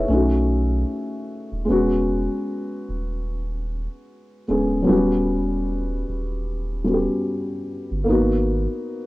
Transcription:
Already playing: G#4 E5
0.08 B1 A3 C#4
0.12 D#4 F#4
1.52 D#1
1.65 G#3 B3
1.69 E1 C#4 F#4
2.89 D#1
4.48 D1 G#3 B3 C#4 G#4
4.82 F#3 B3
4.86 D#1 G3 C#4 F#4
6.09 D#1
6.84 G3 B3 C#4 F#4
6.94 G4
7.91 G1
8.04 A#3 B3
8.08 G#1 D#4 F#4

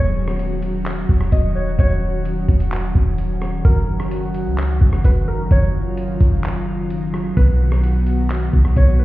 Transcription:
Already playing: D#1 D#3 F#3 C#4 F#4 C#5
0.28 cross-stick
0.39 closed hi-hat
0.62 closed hi-hat
0.86 clap, closed hi-hat
1.09 D#1, kick
1.21 cross-stick
1.32 D#1 D#5, kick, closed hi-hat
1.55 C#5
1.79 D#1 C#5, kick, closed hi-hat
2.25 closed hi-hat
2.49 D#1, kick, closed hi-hat
2.60 closed hi-hat
2.72 clap, closed hi-hat
2.95 D#1, kick
3.18 closed hi-hat
3.42 cross-stick
3.65 F#1 F#3 F#4 A#4, kick, closed hi-hat
4.00 cross-stick
4.11 closed hi-hat
4.34 closed hi-hat
4.46 C#2
4.58 clap, closed hi-hat
4.81 F#1, kick
4.93 cross-stick
5.04 F#1 B4, kick, closed hi-hat
5.28 A#4
5.51 F#1 F4 C#5, kick, closed hi-hat
5.97 closed hi-hat
6.21 F#1, kick, closed hi-hat
6.44 clap, closed hi-hat
6.90 closed hi-hat
7.14 cross-stick
7.37 B1 B3 F#4 B4, kick, closed hi-hat
7.72 cross-stick
7.84 closed hi-hat
8.07 closed hi-hat
8.30 clap, closed hi-hat
8.53 B1, kick
8.65 cross-stick
8.76 B1 C#5, kick, closed hi-hat
8.99 B4

